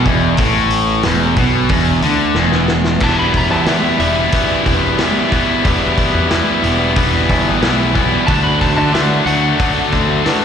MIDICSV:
0, 0, Header, 1, 6, 480
1, 0, Start_track
1, 0, Key_signature, 1, "minor"
1, 0, Tempo, 657174
1, 281, Time_signature, 4, 2, 24, 8
1, 7631, End_track
2, 0, Start_track
2, 0, Title_t, "Electric slide guitar"
2, 0, Program_c, 0, 29
2, 2218, Note_on_c, 0, 81, 68
2, 2326, Note_off_c, 0, 81, 0
2, 2331, Note_on_c, 0, 83, 73
2, 2443, Note_off_c, 0, 83, 0
2, 2464, Note_on_c, 0, 82, 72
2, 2561, Note_off_c, 0, 82, 0
2, 2564, Note_on_c, 0, 81, 66
2, 2679, Note_off_c, 0, 81, 0
2, 2689, Note_on_c, 0, 76, 83
2, 2911, Note_off_c, 0, 76, 0
2, 2920, Note_on_c, 0, 76, 99
2, 3386, Note_off_c, 0, 76, 0
2, 6039, Note_on_c, 0, 81, 73
2, 6158, Note_off_c, 0, 81, 0
2, 6161, Note_on_c, 0, 83, 79
2, 6279, Note_off_c, 0, 83, 0
2, 6293, Note_on_c, 0, 81, 79
2, 6391, Note_off_c, 0, 81, 0
2, 6400, Note_on_c, 0, 81, 72
2, 6519, Note_off_c, 0, 81, 0
2, 6527, Note_on_c, 0, 76, 76
2, 6759, Note_off_c, 0, 76, 0
2, 6764, Note_on_c, 0, 78, 90
2, 7230, Note_off_c, 0, 78, 0
2, 7631, End_track
3, 0, Start_track
3, 0, Title_t, "Overdriven electric guitar"
3, 0, Program_c, 1, 29
3, 34, Note_on_c, 1, 40, 100
3, 270, Note_off_c, 1, 40, 0
3, 273, Note_on_c, 1, 45, 90
3, 750, Note_off_c, 1, 45, 0
3, 756, Note_on_c, 1, 40, 101
3, 991, Note_off_c, 1, 40, 0
3, 998, Note_on_c, 1, 47, 97
3, 1232, Note_off_c, 1, 47, 0
3, 1239, Note_on_c, 1, 40, 102
3, 1473, Note_off_c, 1, 40, 0
3, 1486, Note_on_c, 1, 50, 94
3, 1716, Note_off_c, 1, 50, 0
3, 1717, Note_on_c, 1, 40, 106
3, 2185, Note_off_c, 1, 40, 0
3, 2194, Note_on_c, 1, 40, 85
3, 2200, Note_on_c, 1, 47, 82
3, 2204, Note_on_c, 1, 52, 84
3, 2207, Note_on_c, 1, 55, 85
3, 2212, Note_on_c, 1, 59, 85
3, 2215, Note_on_c, 1, 64, 83
3, 2669, Note_off_c, 1, 47, 0
3, 2670, Note_off_c, 1, 40, 0
3, 2673, Note_on_c, 1, 40, 77
3, 2676, Note_off_c, 1, 52, 0
3, 2678, Note_on_c, 1, 47, 79
3, 2679, Note_on_c, 1, 52, 80
3, 2681, Note_off_c, 1, 55, 0
3, 2683, Note_on_c, 1, 55, 74
3, 2686, Note_off_c, 1, 64, 0
3, 2687, Note_off_c, 1, 59, 0
3, 2689, Note_on_c, 1, 64, 85
3, 2690, Note_on_c, 1, 59, 84
3, 2911, Note_off_c, 1, 40, 0
3, 2911, Note_off_c, 1, 47, 0
3, 2914, Note_on_c, 1, 40, 74
3, 2920, Note_on_c, 1, 47, 71
3, 2921, Note_off_c, 1, 52, 0
3, 2922, Note_off_c, 1, 55, 0
3, 2924, Note_on_c, 1, 52, 82
3, 2925, Note_on_c, 1, 55, 87
3, 2927, Note_off_c, 1, 59, 0
3, 2930, Note_on_c, 1, 59, 89
3, 2931, Note_off_c, 1, 64, 0
3, 2934, Note_on_c, 1, 64, 83
3, 3141, Note_off_c, 1, 40, 0
3, 3145, Note_off_c, 1, 47, 0
3, 3147, Note_off_c, 1, 52, 0
3, 3150, Note_on_c, 1, 40, 85
3, 3151, Note_off_c, 1, 55, 0
3, 3154, Note_on_c, 1, 47, 82
3, 3155, Note_off_c, 1, 59, 0
3, 3156, Note_on_c, 1, 52, 91
3, 3157, Note_off_c, 1, 64, 0
3, 3160, Note_on_c, 1, 55, 101
3, 3164, Note_on_c, 1, 59, 96
3, 3166, Note_on_c, 1, 64, 89
3, 3632, Note_off_c, 1, 40, 0
3, 3638, Note_off_c, 1, 47, 0
3, 3641, Note_on_c, 1, 40, 79
3, 3644, Note_off_c, 1, 52, 0
3, 3647, Note_on_c, 1, 47, 94
3, 3648, Note_off_c, 1, 55, 0
3, 3649, Note_off_c, 1, 59, 0
3, 3653, Note_off_c, 1, 64, 0
3, 3653, Note_on_c, 1, 52, 92
3, 3657, Note_on_c, 1, 55, 90
3, 3657, Note_on_c, 1, 59, 91
3, 3662, Note_on_c, 1, 64, 104
3, 3872, Note_off_c, 1, 40, 0
3, 3876, Note_off_c, 1, 47, 0
3, 3878, Note_off_c, 1, 52, 0
3, 3880, Note_off_c, 1, 55, 0
3, 3880, Note_on_c, 1, 40, 83
3, 3883, Note_off_c, 1, 59, 0
3, 3885, Note_off_c, 1, 64, 0
3, 3885, Note_on_c, 1, 47, 78
3, 3887, Note_on_c, 1, 52, 82
3, 3889, Note_on_c, 1, 55, 74
3, 3892, Note_on_c, 1, 59, 80
3, 3894, Note_on_c, 1, 64, 85
3, 4112, Note_off_c, 1, 40, 0
3, 4116, Note_off_c, 1, 47, 0
3, 4119, Note_off_c, 1, 52, 0
3, 4120, Note_off_c, 1, 55, 0
3, 4120, Note_on_c, 1, 40, 77
3, 4123, Note_off_c, 1, 59, 0
3, 4125, Note_on_c, 1, 47, 78
3, 4127, Note_on_c, 1, 52, 90
3, 4128, Note_off_c, 1, 64, 0
3, 4129, Note_on_c, 1, 55, 80
3, 4132, Note_on_c, 1, 59, 77
3, 4137, Note_on_c, 1, 64, 86
3, 4587, Note_off_c, 1, 40, 0
3, 4588, Note_off_c, 1, 47, 0
3, 4595, Note_off_c, 1, 52, 0
3, 4595, Note_on_c, 1, 40, 77
3, 4597, Note_off_c, 1, 55, 0
3, 4597, Note_on_c, 1, 47, 78
3, 4601, Note_off_c, 1, 59, 0
3, 4602, Note_off_c, 1, 64, 0
3, 4604, Note_on_c, 1, 52, 82
3, 4606, Note_on_c, 1, 55, 81
3, 4609, Note_on_c, 1, 59, 82
3, 4611, Note_on_c, 1, 64, 82
3, 4828, Note_off_c, 1, 40, 0
3, 4832, Note_off_c, 1, 47, 0
3, 4835, Note_off_c, 1, 52, 0
3, 4836, Note_on_c, 1, 40, 75
3, 4838, Note_off_c, 1, 55, 0
3, 4840, Note_off_c, 1, 59, 0
3, 4840, Note_on_c, 1, 47, 78
3, 4843, Note_on_c, 1, 52, 85
3, 4845, Note_off_c, 1, 64, 0
3, 4847, Note_on_c, 1, 55, 85
3, 4849, Note_on_c, 1, 59, 85
3, 4854, Note_on_c, 1, 64, 101
3, 5064, Note_off_c, 1, 40, 0
3, 5073, Note_off_c, 1, 47, 0
3, 5073, Note_off_c, 1, 52, 0
3, 5073, Note_on_c, 1, 40, 91
3, 5080, Note_off_c, 1, 55, 0
3, 5081, Note_off_c, 1, 59, 0
3, 5082, Note_on_c, 1, 47, 85
3, 5082, Note_on_c, 1, 52, 89
3, 5084, Note_off_c, 1, 64, 0
3, 5088, Note_on_c, 1, 55, 89
3, 5090, Note_on_c, 1, 59, 103
3, 5093, Note_on_c, 1, 64, 96
3, 5548, Note_off_c, 1, 40, 0
3, 5554, Note_off_c, 1, 47, 0
3, 5554, Note_off_c, 1, 52, 0
3, 5557, Note_on_c, 1, 40, 86
3, 5558, Note_off_c, 1, 55, 0
3, 5563, Note_off_c, 1, 59, 0
3, 5563, Note_on_c, 1, 47, 88
3, 5563, Note_on_c, 1, 52, 91
3, 5566, Note_off_c, 1, 64, 0
3, 5567, Note_on_c, 1, 55, 93
3, 5572, Note_on_c, 1, 59, 89
3, 5575, Note_on_c, 1, 64, 97
3, 5784, Note_off_c, 1, 40, 0
3, 5786, Note_off_c, 1, 47, 0
3, 5792, Note_off_c, 1, 52, 0
3, 5793, Note_on_c, 1, 40, 77
3, 5795, Note_on_c, 1, 47, 79
3, 5797, Note_off_c, 1, 55, 0
3, 5798, Note_off_c, 1, 59, 0
3, 5800, Note_off_c, 1, 64, 0
3, 5801, Note_on_c, 1, 52, 82
3, 5805, Note_on_c, 1, 55, 84
3, 5807, Note_on_c, 1, 59, 83
3, 5809, Note_on_c, 1, 64, 92
3, 6024, Note_off_c, 1, 40, 0
3, 6025, Note_off_c, 1, 47, 0
3, 6028, Note_off_c, 1, 52, 0
3, 6030, Note_off_c, 1, 55, 0
3, 6031, Note_off_c, 1, 59, 0
3, 6031, Note_on_c, 1, 50, 90
3, 6032, Note_off_c, 1, 64, 0
3, 6038, Note_on_c, 1, 57, 88
3, 6041, Note_on_c, 1, 62, 97
3, 6046, Note_on_c, 1, 66, 82
3, 6500, Note_off_c, 1, 50, 0
3, 6507, Note_off_c, 1, 57, 0
3, 6509, Note_on_c, 1, 50, 76
3, 6511, Note_off_c, 1, 62, 0
3, 6513, Note_off_c, 1, 66, 0
3, 6515, Note_on_c, 1, 57, 79
3, 6520, Note_on_c, 1, 62, 85
3, 6522, Note_on_c, 1, 66, 82
3, 6752, Note_off_c, 1, 50, 0
3, 6757, Note_off_c, 1, 57, 0
3, 6757, Note_off_c, 1, 62, 0
3, 6761, Note_off_c, 1, 66, 0
3, 6761, Note_on_c, 1, 50, 79
3, 6766, Note_on_c, 1, 57, 87
3, 6766, Note_on_c, 1, 62, 82
3, 6769, Note_on_c, 1, 66, 85
3, 6996, Note_off_c, 1, 50, 0
3, 6999, Note_off_c, 1, 57, 0
3, 7004, Note_on_c, 1, 50, 88
3, 7007, Note_off_c, 1, 62, 0
3, 7007, Note_on_c, 1, 57, 97
3, 7008, Note_off_c, 1, 66, 0
3, 7016, Note_on_c, 1, 62, 92
3, 7017, Note_on_c, 1, 66, 100
3, 7477, Note_off_c, 1, 50, 0
3, 7486, Note_off_c, 1, 57, 0
3, 7486, Note_on_c, 1, 50, 85
3, 7488, Note_off_c, 1, 62, 0
3, 7492, Note_off_c, 1, 66, 0
3, 7494, Note_on_c, 1, 57, 95
3, 7497, Note_on_c, 1, 62, 94
3, 7501, Note_on_c, 1, 66, 100
3, 7631, Note_off_c, 1, 50, 0
3, 7631, Note_off_c, 1, 57, 0
3, 7631, Note_off_c, 1, 62, 0
3, 7631, Note_off_c, 1, 66, 0
3, 7631, End_track
4, 0, Start_track
4, 0, Title_t, "Overdriven electric guitar"
4, 0, Program_c, 2, 29
4, 6046, Note_on_c, 2, 54, 94
4, 6519, Note_off_c, 2, 54, 0
4, 6528, Note_on_c, 2, 54, 73
4, 6751, Note_off_c, 2, 54, 0
4, 6760, Note_on_c, 2, 54, 89
4, 7000, Note_off_c, 2, 54, 0
4, 7009, Note_on_c, 2, 54, 85
4, 7479, Note_off_c, 2, 54, 0
4, 7488, Note_on_c, 2, 54, 80
4, 7631, Note_off_c, 2, 54, 0
4, 7631, End_track
5, 0, Start_track
5, 0, Title_t, "Picked electric bass"
5, 0, Program_c, 3, 34
5, 44, Note_on_c, 3, 28, 96
5, 266, Note_off_c, 3, 28, 0
5, 285, Note_on_c, 3, 33, 86
5, 734, Note_off_c, 3, 33, 0
5, 760, Note_on_c, 3, 28, 88
5, 983, Note_off_c, 3, 28, 0
5, 998, Note_on_c, 3, 35, 93
5, 1223, Note_off_c, 3, 35, 0
5, 1241, Note_on_c, 3, 28, 88
5, 1464, Note_off_c, 3, 28, 0
5, 1475, Note_on_c, 3, 38, 86
5, 1701, Note_off_c, 3, 38, 0
5, 1712, Note_on_c, 3, 28, 92
5, 2167, Note_off_c, 3, 28, 0
5, 2199, Note_on_c, 3, 28, 85
5, 2559, Note_off_c, 3, 28, 0
5, 2559, Note_on_c, 3, 40, 75
5, 2857, Note_off_c, 3, 40, 0
5, 2920, Note_on_c, 3, 28, 80
5, 3119, Note_off_c, 3, 28, 0
5, 3404, Note_on_c, 3, 28, 90
5, 3601, Note_off_c, 3, 28, 0
5, 4125, Note_on_c, 3, 28, 86
5, 4322, Note_off_c, 3, 28, 0
5, 4489, Note_on_c, 3, 40, 97
5, 4684, Note_off_c, 3, 40, 0
5, 4844, Note_on_c, 3, 28, 91
5, 5330, Note_off_c, 3, 28, 0
5, 5330, Note_on_c, 3, 31, 83
5, 5526, Note_off_c, 3, 31, 0
5, 5560, Note_on_c, 3, 35, 85
5, 5958, Note_off_c, 3, 35, 0
5, 6048, Note_on_c, 3, 38, 83
5, 6408, Note_off_c, 3, 38, 0
5, 6408, Note_on_c, 3, 50, 83
5, 6704, Note_off_c, 3, 50, 0
5, 6762, Note_on_c, 3, 38, 82
5, 6961, Note_off_c, 3, 38, 0
5, 7252, Note_on_c, 3, 38, 97
5, 7448, Note_off_c, 3, 38, 0
5, 7631, End_track
6, 0, Start_track
6, 0, Title_t, "Drums"
6, 41, Note_on_c, 9, 46, 50
6, 42, Note_on_c, 9, 36, 99
6, 114, Note_off_c, 9, 46, 0
6, 115, Note_off_c, 9, 36, 0
6, 271, Note_on_c, 9, 46, 78
6, 281, Note_on_c, 9, 36, 102
6, 344, Note_off_c, 9, 46, 0
6, 354, Note_off_c, 9, 36, 0
6, 515, Note_on_c, 9, 46, 61
6, 588, Note_off_c, 9, 46, 0
6, 753, Note_on_c, 9, 46, 83
6, 754, Note_on_c, 9, 38, 108
6, 826, Note_off_c, 9, 46, 0
6, 827, Note_off_c, 9, 38, 0
6, 997, Note_on_c, 9, 46, 59
6, 999, Note_on_c, 9, 36, 92
6, 1070, Note_off_c, 9, 46, 0
6, 1072, Note_off_c, 9, 36, 0
6, 1233, Note_on_c, 9, 46, 77
6, 1240, Note_on_c, 9, 36, 107
6, 1307, Note_off_c, 9, 46, 0
6, 1313, Note_off_c, 9, 36, 0
6, 1478, Note_on_c, 9, 46, 58
6, 1551, Note_off_c, 9, 46, 0
6, 1714, Note_on_c, 9, 38, 62
6, 1787, Note_off_c, 9, 38, 0
6, 1839, Note_on_c, 9, 38, 59
6, 1912, Note_off_c, 9, 38, 0
6, 1957, Note_on_c, 9, 38, 86
6, 2030, Note_off_c, 9, 38, 0
6, 2077, Note_on_c, 9, 38, 88
6, 2150, Note_off_c, 9, 38, 0
6, 2194, Note_on_c, 9, 49, 106
6, 2200, Note_on_c, 9, 36, 103
6, 2267, Note_off_c, 9, 49, 0
6, 2273, Note_off_c, 9, 36, 0
6, 2436, Note_on_c, 9, 46, 53
6, 2440, Note_on_c, 9, 36, 78
6, 2509, Note_off_c, 9, 46, 0
6, 2513, Note_off_c, 9, 36, 0
6, 2675, Note_on_c, 9, 46, 67
6, 2676, Note_on_c, 9, 38, 108
6, 2748, Note_off_c, 9, 46, 0
6, 2749, Note_off_c, 9, 38, 0
6, 2919, Note_on_c, 9, 46, 47
6, 2992, Note_off_c, 9, 46, 0
6, 3157, Note_on_c, 9, 46, 75
6, 3162, Note_on_c, 9, 36, 99
6, 3230, Note_off_c, 9, 46, 0
6, 3236, Note_off_c, 9, 36, 0
6, 3403, Note_on_c, 9, 46, 51
6, 3404, Note_on_c, 9, 36, 78
6, 3476, Note_off_c, 9, 46, 0
6, 3477, Note_off_c, 9, 36, 0
6, 3641, Note_on_c, 9, 46, 70
6, 3642, Note_on_c, 9, 38, 98
6, 3714, Note_off_c, 9, 46, 0
6, 3715, Note_off_c, 9, 38, 0
6, 3884, Note_on_c, 9, 46, 53
6, 3886, Note_on_c, 9, 36, 74
6, 3957, Note_off_c, 9, 46, 0
6, 3959, Note_off_c, 9, 36, 0
6, 4126, Note_on_c, 9, 36, 109
6, 4127, Note_on_c, 9, 46, 76
6, 4199, Note_off_c, 9, 36, 0
6, 4200, Note_off_c, 9, 46, 0
6, 4365, Note_on_c, 9, 36, 79
6, 4365, Note_on_c, 9, 46, 59
6, 4438, Note_off_c, 9, 36, 0
6, 4438, Note_off_c, 9, 46, 0
6, 4606, Note_on_c, 9, 46, 76
6, 4607, Note_on_c, 9, 38, 111
6, 4679, Note_off_c, 9, 46, 0
6, 4680, Note_off_c, 9, 38, 0
6, 4848, Note_on_c, 9, 46, 54
6, 4921, Note_off_c, 9, 46, 0
6, 5084, Note_on_c, 9, 46, 72
6, 5087, Note_on_c, 9, 36, 109
6, 5157, Note_off_c, 9, 46, 0
6, 5160, Note_off_c, 9, 36, 0
6, 5328, Note_on_c, 9, 36, 80
6, 5328, Note_on_c, 9, 46, 56
6, 5401, Note_off_c, 9, 36, 0
6, 5401, Note_off_c, 9, 46, 0
6, 5568, Note_on_c, 9, 46, 72
6, 5569, Note_on_c, 9, 38, 109
6, 5641, Note_off_c, 9, 46, 0
6, 5642, Note_off_c, 9, 38, 0
6, 5810, Note_on_c, 9, 36, 75
6, 5813, Note_on_c, 9, 46, 52
6, 5883, Note_off_c, 9, 36, 0
6, 5886, Note_off_c, 9, 46, 0
6, 6050, Note_on_c, 9, 36, 111
6, 6051, Note_on_c, 9, 46, 70
6, 6123, Note_off_c, 9, 36, 0
6, 6124, Note_off_c, 9, 46, 0
6, 6291, Note_on_c, 9, 36, 75
6, 6297, Note_on_c, 9, 46, 56
6, 6364, Note_off_c, 9, 36, 0
6, 6370, Note_off_c, 9, 46, 0
6, 6534, Note_on_c, 9, 46, 68
6, 6535, Note_on_c, 9, 38, 109
6, 6607, Note_off_c, 9, 46, 0
6, 6608, Note_off_c, 9, 38, 0
6, 6769, Note_on_c, 9, 46, 51
6, 6842, Note_off_c, 9, 46, 0
6, 7008, Note_on_c, 9, 46, 69
6, 7010, Note_on_c, 9, 36, 111
6, 7082, Note_off_c, 9, 46, 0
6, 7083, Note_off_c, 9, 36, 0
6, 7250, Note_on_c, 9, 36, 77
6, 7250, Note_on_c, 9, 46, 49
6, 7323, Note_off_c, 9, 36, 0
6, 7323, Note_off_c, 9, 46, 0
6, 7493, Note_on_c, 9, 46, 68
6, 7494, Note_on_c, 9, 38, 105
6, 7566, Note_off_c, 9, 46, 0
6, 7567, Note_off_c, 9, 38, 0
6, 7631, End_track
0, 0, End_of_file